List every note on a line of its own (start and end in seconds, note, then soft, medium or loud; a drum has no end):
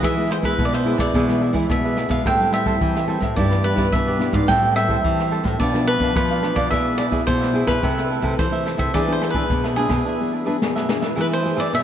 0.02 0.55 E3 medium
0.02 0.50 E3 medium
0.02 0.12 G#3 medium
0.02 0.12 B3 soft
0.02 0.29 E4 medium
0.02 0.12 E4 medium
0.02 0.30 G#4 medium
0.02 0.30 B4 medium
0.02 0.30 E5 medium
0.02 kick medium
0.02 cross-stick medium
0.02 closed hi-hat medium
0.17 0.40 G#3 medium
0.17 0.40 B3 medium
0.17 0.40 E4 medium
0.17 closed hi-hat soft
0.30 0.42 E4 soft
0.30 0.43 G#4 soft
0.30 0.43 B4 medium
0.30 0.37 C5 medium
0.30 0.43 E5 medium
0.30 cross-stick medium
0.30 closed hi-hat soft
0.42 0.81 G#3 medium
0.42 0.81 B3 medium
0.42 0.81 E4 medium
0.42 0.53 E4 medium
0.42 0.53 G#4 medium
0.42 0.53 B4 medium
0.42 0.64 B4 medium
0.42 0.54 E5 medium
0.42 kick medium
0.42 closed hi-hat soft
0.57 1.11 B2 medium
0.57 0.94 B2 medium
0.57 kick medium
0.57 closed hi-hat medium
0.65 0.72 D5 medium
0.73 0.85 G#4 soft
0.73 0.86 B4 soft
0.73 1.00 C5 medium
0.73 0.86 E5 soft
0.73 cross-stick medium
0.73 closed hi-hat soft
0.84 1.23 G#3 medium
0.84 1.23 B3 medium
0.84 1.23 E4 medium
0.84 0.99 E4 medium
0.84 0.99 G#4 medium
0.84 0.99 B4 medium
0.84 0.98 E5 medium
0.84 closed hi-hat soft
0.97 1.11 B2 medium
0.97 1.14 G#4 soft
0.97 1.13 B4 soft
0.97 1.66 D5 medium
0.97 1.13 E5 soft
0.97 kick medium
0.97 cross-stick medium
0.97 closed hi-hat soft
1.14 1.50 B2 medium
1.14 1.67 E3 medium
1.14 1.40 E4 medium
1.14 1.41 G#4 medium
1.14 1.41 B4 medium
1.14 1.42 E5 medium
1.14 kick medium
1.14 closed hi-hat medium
1.27 1.51 G#3 medium
1.27 1.51 B3 medium
1.27 1.52 E4 medium
1.27 cross-stick medium
1.27 closed hi-hat soft
1.42 1.53 E4 soft
1.42 1.54 G#4 soft
1.42 1.54 B4 soft
1.42 1.54 E5 soft
1.42 closed hi-hat soft
1.53 1.66 E3 medium
1.53 1.92 G#3 medium
1.53 1.92 B3 medium
1.53 1.92 E4 medium
1.53 1.64 E4 medium
1.53 1.64 G#4 medium
1.53 1.65 B4 medium
1.53 1.65 E5 medium
1.53 kick medium
1.69 2.23 B2 medium
1.69 2.05 B2 medium
1.69 2.10 E5 medium
1.69 kick medium
1.69 cross-stick medium
1.69 closed hi-hat medium
1.84 1.96 G#4 soft
1.84 1.97 B4 medium
1.84 1.97 E5 medium
1.96 2.23 G#3 medium
1.96 2.23 B3 medium
1.96 2.10 E4 soft
1.96 2.23 E4 medium
1.96 2.10 G#4 soft
1.96 2.10 B4 soft
1.96 2.09 E5 medium
1.96 cross-stick medium
1.96 closed hi-hat soft
2.09 2.22 B2 medium
2.09 2.25 G#4 soft
2.09 2.24 B4 soft
2.09 2.24 E5 soft
2.09 2.25 F5 medium
2.09 kick medium
2.25 2.78 A2 medium
2.25 2.73 A2 medium
2.25 2.35 G3 medium
2.25 2.35 C4 medium
2.25 2.35 E4 medium
2.25 2.51 A4 medium
2.25 2.52 C5 medium
2.25 2.52 E5 medium
2.25 2.53 G5 medium
2.25 kick medium
2.25 cross-stick medium
2.25 closed hi-hat medium
2.39 2.63 G3 medium
2.39 2.63 C4 medium
2.39 2.63 E4 medium
2.52 2.65 A4 soft
2.52 2.65 C5 soft
2.52 2.66 E5 soft
2.52 3.05 E5 medium
2.52 2.66 G5 medium
2.52 cross-stick medium
2.52 closed hi-hat soft
2.66 3.04 G3 medium
2.66 3.04 C4 medium
2.66 3.04 E4 medium
2.66 2.76 A4 medium
2.66 2.76 C5 medium
2.66 2.76 E5 medium
2.66 2.76 G5 medium
2.66 kick medium
2.81 3.34 E3 medium
2.81 3.17 E3 medium
2.81 kick medium
2.81 closed hi-hat medium
2.96 3.07 C5 soft
2.96 3.08 E5 soft
2.96 3.08 G5 soft
2.96 cross-stick medium
3.07 3.26 G3 medium
3.07 3.26 C4 medium
3.07 3.26 E4 medium
3.07 3.21 A4 medium
3.07 3.21 C5 medium
3.07 3.22 E5 medium
3.07 3.21 G5 medium
3.07 closed hi-hat soft
3.20 3.33 A2 medium
3.20 3.36 C5 soft
3.20 3.36 E5 soft
3.20 3.35 G5 soft
3.20 kick medium
3.20 cross-stick medium
3.20 closed hi-hat soft
3.35 3.89 G2 medium
3.35 3.73 G2 medium
3.35 3.46 E3 medium
3.35 3.46 B3 medium
3.35 3.46 D4 medium
3.35 3.63 E4 medium
3.35 3.64 G4 medium
3.35 3.64 B4 medium
3.35 3.65 D5 medium
3.35 kick medium
3.35 closed hi-hat medium
3.50 3.74 E3 medium
3.50 3.74 B3 medium
3.50 3.74 D4 medium
3.50 cross-stick medium
3.50 closed hi-hat soft
3.64 3.76 E4 soft
3.64 3.76 G4 soft
3.64 3.93 B4 medium
3.64 3.77 B4 soft
3.64 3.77 D5 soft
3.64 closed hi-hat soft
3.76 3.89 G2 medium
3.76 4.15 E3 medium
3.76 4.15 B3 medium
3.76 4.15 D4 medium
3.76 3.87 E4 medium
3.76 3.87 G4 medium
3.76 3.87 B4 medium
3.76 3.87 D5 medium
3.76 kick medium
3.76 closed hi-hat soft
3.92 4.45 G2 medium
3.92 4.28 B2 medium
3.92 4.34 E5 medium
3.92 kick medium
3.92 cross-stick medium
3.92 closed hi-hat medium
4.07 4.20 G4 medium
4.07 4.20 B4 medium
4.07 4.19 D5 medium
4.07 closed hi-hat soft
4.18 4.45 E3 medium
4.18 4.45 B3 medium
4.18 4.45 D4 medium
4.18 4.33 E4 soft
4.18 4.34 G4 soft
4.18 4.34 B4 soft
4.18 cross-stick medium
4.18 closed hi-hat soft
4.23 4.33 D5 medium
4.32 4.45 G#2 medium
4.32 4.48 G4 soft
4.32 4.48 B4 soft
4.32 4.47 D5 soft
4.32 4.47 F5 medium
4.32 kick medium
4.32 closed hi-hat soft
4.47 5.01 A2 medium
4.47 4.96 A2 medium
4.47 4.56 G3 medium
4.47 4.57 C4 medium
4.47 4.57 E4 medium
4.47 4.76 A4 medium
4.47 4.76 C5 medium
4.47 4.76 E5 medium
4.47 4.75 G5 loud
4.47 kick medium
4.47 cross-stick medium
4.47 closed hi-hat medium
4.52 4.77 G5 medium
4.61 4.85 G3 medium
4.61 4.85 C4 medium
4.61 4.85 E4 medium
4.61 closed hi-hat soft
4.76 4.89 A4 medium
4.76 4.89 C5 medium
4.76 5.28 E5 medium
4.76 4.89 E5 soft
4.76 4.90 G5 medium
4.76 cross-stick medium
4.76 closed hi-hat soft
4.88 5.26 G3 medium
4.88 5.26 C4 medium
4.88 5.26 E4 medium
4.88 4.99 A4 medium
4.88 4.99 C5 medium
4.88 4.99 E5 medium
4.88 4.99 G5 medium
4.88 kick medium
4.88 closed hi-hat soft
5.02 5.56 E3 medium
5.02 5.40 E3 medium
5.02 kick medium
5.02 closed hi-hat medium
5.19 5.31 C5 soft
5.19 5.32 E5 soft
5.19 5.31 G5 soft
5.19 cross-stick medium
5.19 closed hi-hat soft
5.30 5.56 G3 medium
5.30 5.57 C4 medium
5.30 5.57 E4 medium
5.30 5.44 A4 medium
5.30 5.45 C5 medium
5.30 5.45 E5 medium
5.30 5.44 G5 medium
5.30 closed hi-hat soft
5.44 5.56 A2 medium
5.44 5.59 C5 soft
5.44 5.59 E5 soft
5.44 5.58 G5 soft
5.44 kick medium
5.44 cross-stick medium
5.44 closed hi-hat soft
5.59 6.12 B2 medium
5.59 5.95 B2 medium
5.59 5.68 F3 medium
5.59 5.68 B3 medium
5.59 5.68 D4 medium
5.59 5.86 D4 medium
5.59 5.87 B4 medium
5.59 5.85 D5 medium
5.59 5.87 D5 medium
5.59 5.88 F5 medium
5.59 kick medium
5.59 closed hi-hat medium
5.73 5.96 F3 medium
5.73 5.97 B3 medium
5.73 5.97 D4 medium
5.73 cross-stick medium
5.73 closed hi-hat soft
5.87 6.00 D4 soft
5.87 6.15 B4 medium
5.87 6.00 B4 soft
5.87 6.00 D5 medium
5.87 6.01 F5 soft
5.87 closed hi-hat soft
5.99 6.12 B2 medium
5.99 6.38 F3 medium
5.99 6.38 B3 medium
5.99 6.38 D4 medium
5.99 6.10 D4 medium
5.99 6.10 B4 medium
5.99 6.10 D5 medium
5.99 6.11 F5 medium
5.99 kick medium
6.14 6.67 B2 medium
6.14 6.51 F3 medium
6.14 6.59 B4 medium
6.14 kick medium
6.14 cross-stick medium
6.14 closed hi-hat medium
6.31 6.43 B4 soft
6.31 6.43 D5 medium
6.31 6.43 F5 medium
6.42 6.68 F3 medium
6.42 6.68 B3 medium
6.42 6.69 D4 medium
6.42 6.56 D4 soft
6.42 6.56 B4 soft
6.42 6.56 D5 soft
6.42 6.55 F5 medium
6.42 cross-stick medium
6.42 closed hi-hat soft
6.55 6.68 B2 medium
6.55 6.70 B4 soft
6.55 6.70 D5 medium
6.55 6.70 D5 soft
6.55 6.70 F5 soft
6.55 kick medium
6.70 7.24 B2 medium
6.70 7.19 B2 medium
6.70 7.08 B3 medium
6.70 7.08 E4 medium
6.70 6.97 E4 medium
6.70 7.09 G#4 medium
6.70 6.98 G#4 medium
6.70 6.99 B4 medium
6.70 6.97 E5 loud
6.70 6.99 E5 medium
6.70 kick medium
6.70 cross-stick medium
6.70 closed hi-hat medium
6.98 7.11 E4 soft
6.98 7.11 G#4 medium
6.98 7.11 B4 medium
6.98 7.05 D5 medium
6.98 7.11 E5 medium
6.98 cross-stick medium
6.98 closed hi-hat soft
7.10 7.49 B3 medium
7.10 7.49 E4 medium
7.10 7.21 E4 medium
7.10 7.49 G#4 medium
7.10 7.21 G#4 medium
7.10 7.21 B4 medium
7.10 7.22 E5 medium
7.10 kick medium
7.26 7.79 B2 medium
7.26 7.63 B2 medium
7.26 7.66 C5 medium
7.26 kick medium
7.26 closed hi-hat medium
7.41 7.54 G#4 soft
7.41 7.54 B4 soft
7.41 7.53 E5 soft
7.41 cross-stick medium
7.52 7.77 B3 medium
7.52 7.77 E4 medium
7.52 7.67 E4 medium
7.52 7.78 G#4 medium
7.52 7.68 G#4 medium
7.52 7.67 B4 medium
7.52 7.66 E5 medium
7.52 closed hi-hat soft
7.67 7.79 B2 medium
7.67 7.82 G#4 soft
7.67 8.40 B4 medium
7.67 7.81 B4 soft
7.67 7.81 E5 soft
7.67 kick medium
7.67 cross-stick medium
7.67 closed hi-hat soft
7.81 8.35 C3 medium
7.81 8.18 C3 loud
7.81 8.08 A3 medium
7.81 8.08 E4 medium
7.81 8.09 E4 medium
7.81 8.08 A4 medium
7.81 8.10 A4 medium
7.81 8.10 C5 medium
7.81 8.10 E5 medium
7.81 kick medium
7.81 closed hi-hat medium
7.98 cross-stick medium
7.98 closed hi-hat soft
8.10 8.22 E4 soft
8.10 8.23 A4 soft
8.10 8.23 C5 soft
8.10 8.23 E5 medium
8.10 closed hi-hat soft
8.21 8.35 C3 medium
8.21 8.46 A3 medium
8.21 8.47 E4 medium
8.21 8.33 E4 medium
8.21 8.47 A4 medium
8.21 8.33 A4 medium
8.21 8.33 C5 medium
8.21 8.33 E5 medium
8.21 kick medium
8.21 closed hi-hat soft
8.37 8.90 C3 medium
8.37 8.74 E3 medium
8.37 8.82 C5 medium
8.37 kick medium
8.37 cross-stick medium
8.37 closed hi-hat medium
8.51 8.89 A3 medium
8.51 8.89 E4 medium
8.51 8.89 A4 medium
8.51 8.64 A4 soft
8.51 8.65 C5 medium
8.51 8.65 E5 medium
8.51 closed hi-hat soft
8.65 8.79 E4 soft
8.65 8.79 A4 soft
8.65 8.78 C5 soft
8.65 8.77 E5 soft
8.65 cross-stick medium
8.65 closed hi-hat soft
8.78 8.91 C3 medium
8.78 8.93 A4 soft
8.78 8.92 C5 soft
8.78 8.92 E5 soft
8.78 8.94 E5 medium
8.78 kick medium
8.78 closed hi-hat soft
8.93 9.47 E3 medium
8.93 9.42 E3 medium
8.93 9.02 B3 medium
8.93 9.02 D4 medium
8.93 9.20 D4 medium
8.93 9.02 G#4 medium
8.93 9.21 G#4 medium
8.93 9.21 B4 medium
8.93 9.13 D5 medium
8.93 9.21 E5 medium
8.93 kick medium
8.93 cross-stick medium
8.93 closed hi-hat medium
9.07 9.31 B3 medium
9.07 9.31 D4 medium
9.07 9.31 G#4 medium
9.07 closed hi-hat soft
9.12 9.22 C5 medium
9.21 9.33 D4 medium
9.21 9.34 G#4 soft
9.21 9.34 B4 medium
9.21 9.30 C5 medium
9.21 9.35 E5 soft
9.21 cross-stick medium
9.21 closed hi-hat soft
9.30 9.72 B3 medium
9.30 9.65 B4 medium
9.30 closed hi-hat soft
9.35 9.44 D4 medium
9.35 9.73 D4 medium
9.35 9.73 G#4 medium
9.35 9.45 G#4 medium
9.35 9.45 B4 medium
9.35 9.45 E5 medium
9.35 kick medium
9.49 10.02 B2 medium
9.49 9.85 B2 medium
9.49 kick medium
9.49 closed hi-hat medium
9.64 9.77 G#4 soft
9.64 9.77 B4 soft
9.64 9.77 E5 soft
9.64 cross-stick medium
9.64 closed hi-hat soft
9.76 10.14 B3 medium
9.76 10.14 D4 medium
9.76 9.90 D4 medium
9.76 10.57 G#4 medium
9.76 10.15 G#4 medium
9.76 9.91 G#4 medium
9.76 9.91 B4 medium
9.76 9.90 E5 medium
9.76 closed hi-hat medium
9.89 10.02 B2 medium
9.89 10.05 G#4 soft
9.89 10.05 B4 soft
9.89 10.04 E5 soft
9.89 kick medium
9.89 cross-stick medium
9.89 closed hi-hat soft
10.05 10.59 E3 medium
10.05 10.31 D4 medium
10.05 10.32 G#4 medium
10.05 10.33 B4 medium
10.05 10.33 E5 medium
10.21 10.43 B3 medium
10.21 10.44 D4 medium
10.21 10.44 G#4 medium
10.33 10.44 D4 soft
10.33 10.45 G#4 soft
10.33 10.45 B4 soft
10.33 10.46 E5 soft
10.46 10.85 B3 medium
10.46 10.56 D4 medium
10.46 10.85 D4 medium
10.46 10.56 G#4 medium
10.46 10.85 G#4 medium
10.46 10.56 B4 medium
10.46 10.56 E5 medium
10.62 11.15 B2 medium
10.62 snare soft
10.75 10.88 G#4 soft
10.75 10.88 B4 medium
10.75 10.88 E5 medium
10.75 snare soft
10.88 11.07 B3 medium
10.88 11.02 D4 soft
10.88 11.07 D4 soft
10.88 11.02 G#4 soft
10.88 11.07 G#4 medium
10.88 11.01 B4 soft
10.88 11.00 E5 medium
10.88 snare medium
11.01 11.15 G#4 soft
11.01 11.15 B4 soft
11.01 11.15 E5 soft
11.01 snare medium
11.16 11.53 E3 medium
11.16 11.71 E3 medium
11.16 11.41 B3 medium
11.16 11.41 E4 medium
11.16 11.42 G#4 medium
11.16 11.42 B4 medium
11.16 11.43 E5 medium
11.21 11.26 B4 medium
11.33 11.58 C5 medium
11.42 11.83 B3 medium
11.42 11.55 E4 medium
11.42 11.83 E4 medium
11.42 11.55 G#4 soft
11.42 11.83 G#4 medium
11.42 11.55 B4 medium
11.42 11.56 E5 medium
11.56 11.70 E3 medium
11.56 11.67 E4 medium
11.56 11.67 G#4 medium
11.56 11.67 B4 medium
11.56 11.74 D5 medium
11.56 11.67 E5 medium
11.73 11.83 B2 medium
11.73 11.80 E5 loud